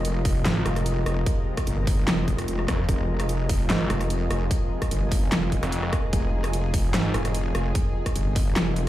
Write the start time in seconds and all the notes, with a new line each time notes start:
Already playing: F1 C3 F3 G3 G#3 F4 A#4 D#5 A#5
0.05 closed hi-hat
0.25 kick, open hi-hat
0.45 G#1, snare, clap, closed hi-hat
0.66 F1, cross-stick, closed hi-hat
0.76 cross-stick, closed hi-hat
0.86 closed hi-hat
1.06 F1, cross-stick, closed hi-hat
1.26 kick, closed hi-hat
1.57 kick, cross-stick, closed hi-hat
1.67 G1, closed hi-hat
1.87 kick, open hi-hat
2.08 F1, snare, clap, closed hi-hat
2.28 kick, closed hi-hat
2.38 cross-stick, closed hi-hat
2.48 closed hi-hat
2.59 cross-stick
2.68 F1, kick, cross-stick, closed hi-hat
2.79 F2
2.89 F1 G#4, kick, closed hi-hat
3.20 cross-stick, closed hi-hat
3.29 closed hi-hat
3.49 kick, open hi-hat
3.70 G#1, snare, clap, closed hi-hat
3.90 F1, cross-stick, closed hi-hat
4.01 cross-stick, closed hi-hat
4.10 closed hi-hat
4.30 F1, cross-stick, closed hi-hat
4.51 kick, closed hi-hat
4.82 kick, cross-stick, closed hi-hat
4.91 G1, closed hi-hat
5.12 kick, open hi-hat
5.32 F1, snare, clap, closed hi-hat
5.52 kick, closed hi-hat
5.63 F1, cross-stick, closed hi-hat
5.72 closed hi-hat
5.83 cross-stick
5.93 kick, cross-stick, closed hi-hat
6.13 F1, kick, closed hi-hat
6.44 cross-stick, closed hi-hat
6.53 closed hi-hat
6.74 kick, open hi-hat
6.94 G#1, snare, clap, closed hi-hat
7.14 F1, cross-stick, closed hi-hat
7.25 cross-stick, closed hi-hat
7.35 closed hi-hat
7.55 F1, cross-stick, closed hi-hat
7.75 kick, closed hi-hat
8.06 kick, cross-stick, closed hi-hat
8.16 G1, closed hi-hat
8.36 kick, open hi-hat
8.56 F1, snare, clap, closed hi-hat
8.76 closed hi-hat